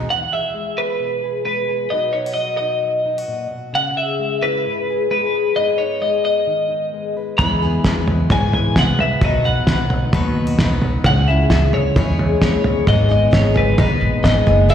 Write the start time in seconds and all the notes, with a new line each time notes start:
Already playing: G#3 B3 D#4 G#4
0.10 E3 F#5
0.33 G#4 E5
0.54 G#3
0.78 B3 B4
1.00 B2
1.24 G#4
1.45 G#3 B4
1.69 G#4
1.90 B2 F#3 D#4 F#4 D#5
1.94 B4
2.13 D#4 C#5
2.26 F#4
2.34 F#3 D#5
2.57 D#4 D#5
2.82 F#3
3.06 D#4
3.18 F#4
3.28 A#2
3.51 B2
3.73 C#3 F#5
3.97 G#4 E5
4.19 G#3
4.43 E4 B4
4.66 G#2
4.90 G#4
5.11 G#3 B4
5.34 G#4
5.56 G#2 G#3 B3 D#4 B4 D#5
5.78 D#4 C#5
6.02 G#3 D#5
6.24 B3 D#5
6.47 D#3
6.71 D#4
6.94 G#3
7.17 B4
7.38 E2 E3 G#3 B3 E4 G#4 B4 B5, kick, floor tom
7.62 B3 E4 G#4
7.84 E2 G#3 B3 E4 G#4, kick, snare
8.08 B3, floor tom
8.30 G#2 B2 E3 G#3 B3 E4 G#4 G#5, kick, floor tom
8.53 G#4 G#5, floor tom
8.76 C2 G#3 B3 E4 G#4 F#5, kick, snare
8.99 B4 E5, floor tom
9.21 B1 B2 D#3 F#3 B3 D#4 B4 D#5, kick, floor tom
9.44 F#3 B3 D#4 F#4 B4 F#5
9.67 B1 F#3 B3 D#4 B4, kick, snare
9.90 D#4, floor tom
10.11 D#2 B2 D#3 F#3 B3 D#4 B4, kick, floor tom
10.35 D#4
10.47 F#4
10.58 B1 F#3 B3 D#4 B4, kick, snare
10.81 B4, floor tom
11.03 C#2 C#3 G#3 C#4 E4 F#5, kick, floor tom
11.07 G#4
11.27 C#4 E4 G#4 E5
11.50 C#2 G#3 C#4 E4, kick, snare
11.54 G#4
11.73 E4 C#5, floor tom
11.96 E2 C#3 G#3 C#4 E4 G#4, kick, floor tom
12.19 G#4, floor tom
12.42 D#2 G#3 C#4 E4 G#4 C#5, kick, snare
12.64 G#4, floor tom
12.87 G#1 G#2 D#3 G#3 B3 D#4 G#4 B4 D#5, kick, floor tom
13.09 G#3 B3 D#4 G#4 D#5
13.31 G#1 G#3 B3 D#4 G#4 C#5, kick, snare
13.54 G#3 B3 D#4 G#4 B4, floor tom
13.78 B1 G#2 D#3 G#3 B3 D#4 G#4, kick, floor tom
14.01 A#1 D#4
14.24 G#1 G#3 B3 D#4 G#4 D#5, kick, snare
14.47 F#1 G#3 B3 D#4 G#4 B4, floor tom
14.69 E3 G#3 B3 E4 G#4 E5